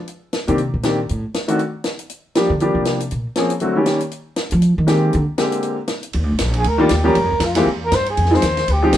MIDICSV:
0, 0, Header, 1, 5, 480
1, 0, Start_track
1, 0, Key_signature, -3, "major"
1, 0, Tempo, 252845
1, 148, Time_signature, 4, 2, 24, 8
1, 17036, End_track
2, 0, Start_track
2, 0, Title_t, "Trumpet"
2, 0, Program_c, 0, 56
2, 12478, Note_on_c, 0, 68, 85
2, 12680, Note_on_c, 0, 70, 91
2, 12709, Note_off_c, 0, 68, 0
2, 12910, Note_off_c, 0, 70, 0
2, 12921, Note_on_c, 0, 67, 80
2, 13380, Note_on_c, 0, 70, 111
2, 13409, Note_off_c, 0, 67, 0
2, 14135, Note_on_c, 0, 65, 77
2, 14164, Note_off_c, 0, 70, 0
2, 14581, Note_off_c, 0, 65, 0
2, 14901, Note_on_c, 0, 70, 92
2, 15080, Note_on_c, 0, 72, 94
2, 15108, Note_off_c, 0, 70, 0
2, 15330, Note_off_c, 0, 72, 0
2, 15372, Note_on_c, 0, 68, 82
2, 15843, Note_on_c, 0, 72, 100
2, 15871, Note_off_c, 0, 68, 0
2, 16549, Note_on_c, 0, 67, 76
2, 16577, Note_off_c, 0, 72, 0
2, 16987, Note_off_c, 0, 67, 0
2, 17036, End_track
3, 0, Start_track
3, 0, Title_t, "Upright piano"
3, 0, Program_c, 1, 0
3, 902, Note_on_c, 1, 51, 62
3, 913, Note_on_c, 1, 58, 61
3, 922, Note_on_c, 1, 60, 61
3, 922, Note_on_c, 1, 67, 65
3, 923, Note_on_c, 1, 62, 53
3, 1086, Note_off_c, 1, 51, 0
3, 1091, Note_off_c, 1, 58, 0
3, 1096, Note_off_c, 1, 60, 0
3, 1096, Note_off_c, 1, 67, 0
3, 1097, Note_off_c, 1, 62, 0
3, 1590, Note_on_c, 1, 51, 56
3, 1594, Note_on_c, 1, 60, 52
3, 1599, Note_on_c, 1, 58, 57
3, 1601, Note_on_c, 1, 62, 55
3, 1612, Note_on_c, 1, 67, 64
3, 1840, Note_off_c, 1, 51, 0
3, 1842, Note_off_c, 1, 60, 0
3, 1844, Note_off_c, 1, 58, 0
3, 1845, Note_off_c, 1, 62, 0
3, 1851, Note_off_c, 1, 67, 0
3, 2809, Note_on_c, 1, 57, 55
3, 2813, Note_on_c, 1, 51, 66
3, 2815, Note_on_c, 1, 60, 55
3, 2825, Note_on_c, 1, 62, 55
3, 2835, Note_on_c, 1, 66, 75
3, 3000, Note_off_c, 1, 57, 0
3, 3003, Note_off_c, 1, 51, 0
3, 3003, Note_off_c, 1, 60, 0
3, 3008, Note_off_c, 1, 62, 0
3, 3014, Note_off_c, 1, 66, 0
3, 4476, Note_on_c, 1, 53, 54
3, 4478, Note_on_c, 1, 55, 52
3, 4489, Note_on_c, 1, 58, 49
3, 4496, Note_on_c, 1, 62, 50
3, 4497, Note_on_c, 1, 67, 61
3, 4724, Note_off_c, 1, 53, 0
3, 4724, Note_off_c, 1, 55, 0
3, 4730, Note_off_c, 1, 58, 0
3, 4733, Note_off_c, 1, 62, 0
3, 4734, Note_off_c, 1, 67, 0
3, 4957, Note_on_c, 1, 55, 55
3, 4958, Note_on_c, 1, 53, 54
3, 4971, Note_on_c, 1, 62, 55
3, 4974, Note_on_c, 1, 58, 54
3, 4974, Note_on_c, 1, 67, 64
3, 5656, Note_off_c, 1, 55, 0
3, 5657, Note_off_c, 1, 53, 0
3, 5663, Note_off_c, 1, 62, 0
3, 5665, Note_off_c, 1, 58, 0
3, 5665, Note_off_c, 1, 67, 0
3, 6391, Note_on_c, 1, 53, 60
3, 6396, Note_on_c, 1, 58, 53
3, 6406, Note_on_c, 1, 60, 59
3, 6410, Note_on_c, 1, 61, 52
3, 6410, Note_on_c, 1, 68, 67
3, 6641, Note_off_c, 1, 53, 0
3, 6643, Note_off_c, 1, 58, 0
3, 6648, Note_off_c, 1, 60, 0
3, 6650, Note_off_c, 1, 61, 0
3, 6651, Note_off_c, 1, 68, 0
3, 6853, Note_on_c, 1, 50, 57
3, 6858, Note_on_c, 1, 54, 56
3, 6864, Note_on_c, 1, 57, 50
3, 6874, Note_on_c, 1, 60, 55
3, 6882, Note_on_c, 1, 66, 63
3, 7112, Note_off_c, 1, 50, 0
3, 7114, Note_off_c, 1, 54, 0
3, 7118, Note_off_c, 1, 57, 0
3, 7122, Note_off_c, 1, 60, 0
3, 7126, Note_off_c, 1, 66, 0
3, 7138, Note_on_c, 1, 51, 58
3, 7147, Note_on_c, 1, 55, 56
3, 7153, Note_on_c, 1, 58, 51
3, 7154, Note_on_c, 1, 61, 54
3, 7165, Note_on_c, 1, 67, 62
3, 7567, Note_off_c, 1, 51, 0
3, 7572, Note_off_c, 1, 55, 0
3, 7575, Note_off_c, 1, 58, 0
3, 7576, Note_off_c, 1, 61, 0
3, 7581, Note_off_c, 1, 67, 0
3, 9242, Note_on_c, 1, 51, 60
3, 9250, Note_on_c, 1, 56, 57
3, 9257, Note_on_c, 1, 60, 54
3, 9265, Note_on_c, 1, 58, 54
3, 9267, Note_on_c, 1, 67, 71
3, 9736, Note_off_c, 1, 51, 0
3, 9740, Note_off_c, 1, 56, 0
3, 9743, Note_off_c, 1, 60, 0
3, 9747, Note_off_c, 1, 58, 0
3, 9748, Note_off_c, 1, 67, 0
3, 10209, Note_on_c, 1, 50, 55
3, 10213, Note_on_c, 1, 56, 49
3, 10217, Note_on_c, 1, 58, 52
3, 10225, Note_on_c, 1, 60, 49
3, 10230, Note_on_c, 1, 67, 64
3, 10921, Note_off_c, 1, 50, 0
3, 10923, Note_off_c, 1, 56, 0
3, 10925, Note_off_c, 1, 58, 0
3, 10929, Note_off_c, 1, 60, 0
3, 10931, Note_off_c, 1, 67, 0
3, 12874, Note_on_c, 1, 51, 89
3, 12894, Note_on_c, 1, 55, 81
3, 12901, Note_on_c, 1, 58, 77
3, 12903, Note_on_c, 1, 62, 74
3, 12909, Note_on_c, 1, 65, 91
3, 13071, Note_off_c, 1, 51, 0
3, 13081, Note_off_c, 1, 55, 0
3, 13085, Note_off_c, 1, 58, 0
3, 13086, Note_off_c, 1, 62, 0
3, 13089, Note_off_c, 1, 65, 0
3, 13362, Note_on_c, 1, 53, 75
3, 13372, Note_on_c, 1, 55, 74
3, 13373, Note_on_c, 1, 58, 68
3, 13383, Note_on_c, 1, 61, 75
3, 13385, Note_on_c, 1, 67, 87
3, 13555, Note_off_c, 1, 53, 0
3, 13560, Note_off_c, 1, 55, 0
3, 13561, Note_off_c, 1, 58, 0
3, 13566, Note_off_c, 1, 61, 0
3, 13567, Note_off_c, 1, 67, 0
3, 14349, Note_on_c, 1, 52, 72
3, 14358, Note_on_c, 1, 56, 70
3, 14358, Note_on_c, 1, 58, 75
3, 14370, Note_on_c, 1, 60, 70
3, 14375, Note_on_c, 1, 67, 84
3, 14529, Note_off_c, 1, 52, 0
3, 14533, Note_off_c, 1, 56, 0
3, 14533, Note_off_c, 1, 58, 0
3, 14539, Note_off_c, 1, 60, 0
3, 14542, Note_off_c, 1, 67, 0
3, 15771, Note_on_c, 1, 53, 67
3, 15776, Note_on_c, 1, 56, 64
3, 15783, Note_on_c, 1, 63, 57
3, 15785, Note_on_c, 1, 60, 68
3, 15798, Note_on_c, 1, 68, 70
3, 15959, Note_off_c, 1, 53, 0
3, 15962, Note_off_c, 1, 56, 0
3, 15965, Note_off_c, 1, 63, 0
3, 15966, Note_off_c, 1, 60, 0
3, 15973, Note_off_c, 1, 68, 0
3, 16752, Note_on_c, 1, 56, 64
3, 16754, Note_on_c, 1, 53, 75
3, 16754, Note_on_c, 1, 60, 71
3, 16761, Note_on_c, 1, 63, 70
3, 16778, Note_on_c, 1, 67, 83
3, 17036, Note_off_c, 1, 53, 0
3, 17036, Note_off_c, 1, 56, 0
3, 17036, Note_off_c, 1, 60, 0
3, 17036, Note_off_c, 1, 63, 0
3, 17036, Note_off_c, 1, 67, 0
3, 17036, End_track
4, 0, Start_track
4, 0, Title_t, "Upright bass"
4, 0, Program_c, 2, 32
4, 919, Note_on_c, 2, 48, 86
4, 1360, Note_off_c, 2, 48, 0
4, 1399, Note_on_c, 2, 46, 77
4, 2028, Note_off_c, 2, 46, 0
4, 2098, Note_on_c, 2, 45, 75
4, 2353, Note_off_c, 2, 45, 0
4, 4744, Note_on_c, 2, 50, 98
4, 5192, Note_off_c, 2, 50, 0
4, 5216, Note_on_c, 2, 48, 81
4, 5857, Note_off_c, 2, 48, 0
4, 5920, Note_on_c, 2, 46, 74
4, 6185, Note_off_c, 2, 46, 0
4, 8585, Note_on_c, 2, 53, 105
4, 9032, Note_off_c, 2, 53, 0
4, 9074, Note_on_c, 2, 51, 90
4, 9705, Note_off_c, 2, 51, 0
4, 9769, Note_on_c, 2, 50, 100
4, 9930, Note_off_c, 2, 50, 0
4, 11665, Note_on_c, 2, 39, 89
4, 11832, Note_off_c, 2, 39, 0
4, 11832, Note_on_c, 2, 38, 65
4, 11990, Note_off_c, 2, 38, 0
4, 12003, Note_on_c, 2, 34, 68
4, 12145, Note_off_c, 2, 34, 0
4, 12166, Note_on_c, 2, 34, 88
4, 12605, Note_off_c, 2, 34, 0
4, 12616, Note_on_c, 2, 38, 81
4, 13087, Note_off_c, 2, 38, 0
4, 13112, Note_on_c, 2, 39, 98
4, 13575, Note_off_c, 2, 39, 0
4, 13587, Note_on_c, 2, 43, 91
4, 13743, Note_off_c, 2, 43, 0
4, 13743, Note_on_c, 2, 41, 69
4, 13877, Note_off_c, 2, 41, 0
4, 13888, Note_on_c, 2, 37, 73
4, 14034, Note_off_c, 2, 37, 0
4, 14045, Note_on_c, 2, 41, 86
4, 14521, Note_off_c, 2, 41, 0
4, 14547, Note_on_c, 2, 40, 78
4, 15012, Note_off_c, 2, 40, 0
4, 15028, Note_on_c, 2, 43, 96
4, 15492, Note_off_c, 2, 43, 0
4, 15518, Note_on_c, 2, 41, 84
4, 15978, Note_off_c, 2, 41, 0
4, 15999, Note_on_c, 2, 39, 94
4, 16458, Note_off_c, 2, 39, 0
4, 16482, Note_on_c, 2, 38, 85
4, 16940, Note_off_c, 2, 38, 0
4, 16961, Note_on_c, 2, 36, 100
4, 17036, Note_off_c, 2, 36, 0
4, 17036, End_track
5, 0, Start_track
5, 0, Title_t, "Drums"
5, 144, Note_on_c, 9, 42, 41
5, 334, Note_off_c, 9, 42, 0
5, 622, Note_on_c, 9, 42, 48
5, 626, Note_on_c, 9, 38, 81
5, 812, Note_off_c, 9, 42, 0
5, 816, Note_off_c, 9, 38, 0
5, 911, Note_on_c, 9, 42, 45
5, 1101, Note_off_c, 9, 42, 0
5, 1102, Note_on_c, 9, 42, 37
5, 1292, Note_off_c, 9, 42, 0
5, 1582, Note_on_c, 9, 42, 53
5, 1586, Note_on_c, 9, 38, 78
5, 1772, Note_off_c, 9, 42, 0
5, 1776, Note_off_c, 9, 38, 0
5, 2074, Note_on_c, 9, 42, 44
5, 2264, Note_off_c, 9, 42, 0
5, 2551, Note_on_c, 9, 42, 54
5, 2555, Note_on_c, 9, 38, 84
5, 2741, Note_off_c, 9, 42, 0
5, 2745, Note_off_c, 9, 38, 0
5, 2817, Note_on_c, 9, 42, 48
5, 3006, Note_off_c, 9, 42, 0
5, 3021, Note_on_c, 9, 42, 40
5, 3210, Note_off_c, 9, 42, 0
5, 3492, Note_on_c, 9, 42, 50
5, 3496, Note_on_c, 9, 38, 80
5, 3682, Note_off_c, 9, 42, 0
5, 3686, Note_off_c, 9, 38, 0
5, 3774, Note_on_c, 9, 42, 41
5, 3964, Note_off_c, 9, 42, 0
5, 3979, Note_on_c, 9, 42, 45
5, 4168, Note_off_c, 9, 42, 0
5, 4467, Note_on_c, 9, 42, 51
5, 4470, Note_on_c, 9, 38, 82
5, 4656, Note_off_c, 9, 42, 0
5, 4660, Note_off_c, 9, 38, 0
5, 4940, Note_on_c, 9, 42, 42
5, 5130, Note_off_c, 9, 42, 0
5, 5416, Note_on_c, 9, 42, 53
5, 5420, Note_on_c, 9, 38, 79
5, 5606, Note_off_c, 9, 42, 0
5, 5610, Note_off_c, 9, 38, 0
5, 5703, Note_on_c, 9, 42, 47
5, 5893, Note_off_c, 9, 42, 0
5, 5901, Note_on_c, 9, 42, 42
5, 6091, Note_off_c, 9, 42, 0
5, 6370, Note_on_c, 9, 42, 53
5, 6374, Note_on_c, 9, 38, 81
5, 6560, Note_off_c, 9, 42, 0
5, 6564, Note_off_c, 9, 38, 0
5, 6642, Note_on_c, 9, 42, 47
5, 6832, Note_off_c, 9, 42, 0
5, 6835, Note_on_c, 9, 42, 42
5, 7025, Note_off_c, 9, 42, 0
5, 7323, Note_on_c, 9, 42, 54
5, 7327, Note_on_c, 9, 38, 77
5, 7513, Note_off_c, 9, 42, 0
5, 7517, Note_off_c, 9, 38, 0
5, 7604, Note_on_c, 9, 42, 45
5, 7794, Note_off_c, 9, 42, 0
5, 7811, Note_on_c, 9, 42, 44
5, 8001, Note_off_c, 9, 42, 0
5, 8281, Note_on_c, 9, 42, 59
5, 8285, Note_on_c, 9, 38, 82
5, 8471, Note_off_c, 9, 42, 0
5, 8474, Note_off_c, 9, 38, 0
5, 8556, Note_on_c, 9, 42, 50
5, 8746, Note_off_c, 9, 42, 0
5, 8767, Note_on_c, 9, 42, 46
5, 8957, Note_off_c, 9, 42, 0
5, 9256, Note_on_c, 9, 42, 56
5, 9260, Note_on_c, 9, 38, 77
5, 9446, Note_off_c, 9, 42, 0
5, 9450, Note_off_c, 9, 38, 0
5, 9736, Note_on_c, 9, 42, 42
5, 9926, Note_off_c, 9, 42, 0
5, 10211, Note_on_c, 9, 42, 57
5, 10215, Note_on_c, 9, 38, 90
5, 10401, Note_off_c, 9, 42, 0
5, 10404, Note_off_c, 9, 38, 0
5, 10481, Note_on_c, 9, 42, 50
5, 10671, Note_off_c, 9, 42, 0
5, 10682, Note_on_c, 9, 42, 47
5, 10871, Note_off_c, 9, 42, 0
5, 11155, Note_on_c, 9, 42, 53
5, 11159, Note_on_c, 9, 38, 82
5, 11345, Note_off_c, 9, 42, 0
5, 11349, Note_off_c, 9, 38, 0
5, 11443, Note_on_c, 9, 42, 46
5, 11633, Note_off_c, 9, 42, 0
5, 11642, Note_on_c, 9, 51, 71
5, 11832, Note_off_c, 9, 51, 0
5, 12123, Note_on_c, 9, 44, 69
5, 12123, Note_on_c, 9, 51, 79
5, 12127, Note_on_c, 9, 38, 80
5, 12313, Note_off_c, 9, 44, 0
5, 12313, Note_off_c, 9, 51, 0
5, 12317, Note_off_c, 9, 38, 0
5, 12408, Note_on_c, 9, 51, 54
5, 12598, Note_off_c, 9, 51, 0
5, 12611, Note_on_c, 9, 51, 65
5, 12801, Note_off_c, 9, 51, 0
5, 13083, Note_on_c, 9, 44, 59
5, 13083, Note_on_c, 9, 51, 85
5, 13087, Note_on_c, 9, 38, 78
5, 13273, Note_off_c, 9, 44, 0
5, 13273, Note_off_c, 9, 51, 0
5, 13277, Note_off_c, 9, 38, 0
5, 13576, Note_on_c, 9, 51, 65
5, 13766, Note_off_c, 9, 51, 0
5, 14050, Note_on_c, 9, 44, 61
5, 14050, Note_on_c, 9, 51, 89
5, 14054, Note_on_c, 9, 38, 77
5, 14240, Note_off_c, 9, 44, 0
5, 14240, Note_off_c, 9, 51, 0
5, 14244, Note_off_c, 9, 38, 0
5, 14334, Note_on_c, 9, 51, 87
5, 14338, Note_on_c, 9, 38, 55
5, 14524, Note_off_c, 9, 51, 0
5, 14527, Note_off_c, 9, 38, 0
5, 15029, Note_on_c, 9, 44, 67
5, 15029, Note_on_c, 9, 51, 78
5, 15033, Note_on_c, 9, 38, 84
5, 15219, Note_off_c, 9, 44, 0
5, 15219, Note_off_c, 9, 51, 0
5, 15223, Note_off_c, 9, 38, 0
5, 15309, Note_on_c, 9, 51, 52
5, 15499, Note_off_c, 9, 51, 0
5, 15514, Note_on_c, 9, 51, 68
5, 15669, Note_on_c, 9, 38, 35
5, 15703, Note_off_c, 9, 51, 0
5, 15828, Note_off_c, 9, 38, 0
5, 15828, Note_on_c, 9, 38, 50
5, 15984, Note_on_c, 9, 44, 61
5, 15984, Note_on_c, 9, 51, 81
5, 15988, Note_off_c, 9, 38, 0
5, 15988, Note_on_c, 9, 38, 84
5, 16174, Note_off_c, 9, 44, 0
5, 16174, Note_off_c, 9, 51, 0
5, 16178, Note_off_c, 9, 38, 0
5, 16271, Note_on_c, 9, 51, 55
5, 16275, Note_on_c, 9, 38, 61
5, 16461, Note_off_c, 9, 51, 0
5, 16464, Note_off_c, 9, 38, 0
5, 16477, Note_on_c, 9, 51, 69
5, 16667, Note_off_c, 9, 51, 0
5, 16947, Note_on_c, 9, 44, 75
5, 16947, Note_on_c, 9, 51, 82
5, 16951, Note_on_c, 9, 38, 85
5, 17036, Note_off_c, 9, 38, 0
5, 17036, Note_off_c, 9, 44, 0
5, 17036, Note_off_c, 9, 51, 0
5, 17036, End_track
0, 0, End_of_file